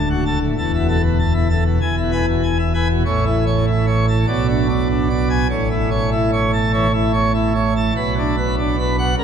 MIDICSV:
0, 0, Header, 1, 2, 480
1, 0, Start_track
1, 0, Key_signature, 3, "major"
1, 0, Tempo, 624350
1, 439, Time_signature, 4, 2, 24, 8
1, 2360, Tempo, 610998
1, 7207, End_track
2, 0, Start_track
2, 0, Title_t, "Pipe organ"
2, 0, Program_c, 0, 19
2, 0, Note_on_c, 0, 26, 67
2, 0, Note_on_c, 0, 38, 68
2, 75, Note_on_c, 0, 66, 45
2, 184, Note_off_c, 0, 66, 0
2, 196, Note_on_c, 0, 81, 54
2, 198, Note_on_c, 0, 69, 51
2, 299, Note_off_c, 0, 81, 0
2, 300, Note_off_c, 0, 69, 0
2, 320, Note_on_c, 0, 45, 53
2, 401, Note_off_c, 0, 26, 0
2, 404, Note_off_c, 0, 38, 0
2, 421, Note_off_c, 0, 45, 0
2, 442, Note_on_c, 0, 40, 60
2, 444, Note_on_c, 0, 81, 74
2, 445, Note_on_c, 0, 28, 56
2, 549, Note_off_c, 0, 81, 0
2, 562, Note_on_c, 0, 64, 51
2, 602, Note_on_c, 0, 47, 46
2, 668, Note_off_c, 0, 64, 0
2, 678, Note_on_c, 0, 69, 54
2, 679, Note_on_c, 0, 81, 55
2, 744, Note_off_c, 0, 47, 0
2, 780, Note_off_c, 0, 69, 0
2, 781, Note_off_c, 0, 81, 0
2, 798, Note_on_c, 0, 47, 55
2, 905, Note_off_c, 0, 47, 0
2, 914, Note_on_c, 0, 81, 52
2, 1023, Note_off_c, 0, 81, 0
2, 1024, Note_on_c, 0, 64, 47
2, 1137, Note_off_c, 0, 64, 0
2, 1150, Note_on_c, 0, 81, 49
2, 1151, Note_on_c, 0, 69, 46
2, 1255, Note_off_c, 0, 81, 0
2, 1256, Note_off_c, 0, 69, 0
2, 1275, Note_on_c, 0, 47, 54
2, 1371, Note_off_c, 0, 40, 0
2, 1372, Note_off_c, 0, 28, 0
2, 1378, Note_off_c, 0, 47, 0
2, 1395, Note_on_c, 0, 40, 57
2, 1395, Note_on_c, 0, 80, 64
2, 1397, Note_on_c, 0, 28, 58
2, 1503, Note_off_c, 0, 80, 0
2, 1514, Note_on_c, 0, 64, 47
2, 1555, Note_on_c, 0, 47, 43
2, 1623, Note_off_c, 0, 64, 0
2, 1627, Note_on_c, 0, 71, 50
2, 1631, Note_on_c, 0, 80, 54
2, 1699, Note_off_c, 0, 47, 0
2, 1734, Note_off_c, 0, 71, 0
2, 1736, Note_off_c, 0, 80, 0
2, 1749, Note_on_c, 0, 47, 48
2, 1860, Note_off_c, 0, 47, 0
2, 1869, Note_on_c, 0, 80, 60
2, 1980, Note_off_c, 0, 80, 0
2, 1985, Note_on_c, 0, 64, 44
2, 2099, Note_off_c, 0, 64, 0
2, 2104, Note_on_c, 0, 80, 54
2, 2106, Note_on_c, 0, 71, 48
2, 2213, Note_off_c, 0, 80, 0
2, 2214, Note_off_c, 0, 71, 0
2, 2227, Note_on_c, 0, 47, 55
2, 2329, Note_off_c, 0, 40, 0
2, 2330, Note_off_c, 0, 28, 0
2, 2334, Note_off_c, 0, 47, 0
2, 2347, Note_on_c, 0, 45, 76
2, 2348, Note_on_c, 0, 33, 75
2, 2349, Note_on_c, 0, 73, 63
2, 2498, Note_off_c, 0, 73, 0
2, 2503, Note_on_c, 0, 64, 62
2, 2654, Note_off_c, 0, 64, 0
2, 2669, Note_on_c, 0, 73, 64
2, 2818, Note_off_c, 0, 73, 0
2, 2829, Note_on_c, 0, 64, 56
2, 2978, Note_off_c, 0, 64, 0
2, 2984, Note_on_c, 0, 73, 60
2, 3135, Note_off_c, 0, 73, 0
2, 3153, Note_on_c, 0, 81, 74
2, 3288, Note_off_c, 0, 45, 0
2, 3289, Note_off_c, 0, 33, 0
2, 3294, Note_off_c, 0, 81, 0
2, 3304, Note_on_c, 0, 35, 73
2, 3304, Note_on_c, 0, 47, 68
2, 3305, Note_on_c, 0, 74, 63
2, 3457, Note_off_c, 0, 74, 0
2, 3468, Note_on_c, 0, 62, 57
2, 3618, Note_off_c, 0, 62, 0
2, 3634, Note_on_c, 0, 74, 61
2, 3781, Note_off_c, 0, 74, 0
2, 3795, Note_on_c, 0, 62, 58
2, 3941, Note_off_c, 0, 62, 0
2, 3952, Note_on_c, 0, 74, 52
2, 4098, Note_off_c, 0, 74, 0
2, 4108, Note_on_c, 0, 80, 78
2, 4242, Note_off_c, 0, 35, 0
2, 4243, Note_off_c, 0, 47, 0
2, 4250, Note_off_c, 0, 80, 0
2, 4264, Note_on_c, 0, 33, 75
2, 4266, Note_on_c, 0, 45, 65
2, 4269, Note_on_c, 0, 73, 63
2, 4418, Note_off_c, 0, 73, 0
2, 4428, Note_on_c, 0, 64, 57
2, 4578, Note_off_c, 0, 64, 0
2, 4588, Note_on_c, 0, 73, 66
2, 4738, Note_off_c, 0, 73, 0
2, 4752, Note_on_c, 0, 64, 64
2, 4901, Note_off_c, 0, 64, 0
2, 4919, Note_on_c, 0, 73, 58
2, 5065, Note_off_c, 0, 73, 0
2, 5076, Note_on_c, 0, 81, 75
2, 5224, Note_off_c, 0, 81, 0
2, 5234, Note_on_c, 0, 52, 62
2, 5238, Note_on_c, 0, 73, 63
2, 5347, Note_off_c, 0, 52, 0
2, 5385, Note_off_c, 0, 73, 0
2, 5392, Note_on_c, 0, 64, 65
2, 5541, Note_off_c, 0, 64, 0
2, 5553, Note_on_c, 0, 73, 64
2, 5701, Note_off_c, 0, 73, 0
2, 5716, Note_on_c, 0, 64, 64
2, 5863, Note_off_c, 0, 64, 0
2, 5879, Note_on_c, 0, 73, 60
2, 6024, Note_off_c, 0, 73, 0
2, 6046, Note_on_c, 0, 81, 68
2, 6165, Note_off_c, 0, 33, 0
2, 6166, Note_off_c, 0, 45, 0
2, 6181, Note_off_c, 0, 81, 0
2, 6200, Note_on_c, 0, 47, 68
2, 6203, Note_on_c, 0, 35, 73
2, 6204, Note_on_c, 0, 71, 72
2, 6347, Note_off_c, 0, 71, 0
2, 6373, Note_on_c, 0, 62, 60
2, 6511, Note_off_c, 0, 62, 0
2, 6526, Note_on_c, 0, 71, 64
2, 6667, Note_off_c, 0, 71, 0
2, 6692, Note_on_c, 0, 62, 66
2, 6829, Note_off_c, 0, 62, 0
2, 6849, Note_on_c, 0, 71, 58
2, 6988, Note_off_c, 0, 71, 0
2, 7005, Note_on_c, 0, 78, 84
2, 7128, Note_off_c, 0, 47, 0
2, 7130, Note_off_c, 0, 35, 0
2, 7138, Note_off_c, 0, 78, 0
2, 7159, Note_on_c, 0, 37, 72
2, 7162, Note_on_c, 0, 49, 85
2, 7164, Note_on_c, 0, 70, 71
2, 7207, Note_off_c, 0, 37, 0
2, 7207, Note_off_c, 0, 49, 0
2, 7207, Note_off_c, 0, 70, 0
2, 7207, End_track
0, 0, End_of_file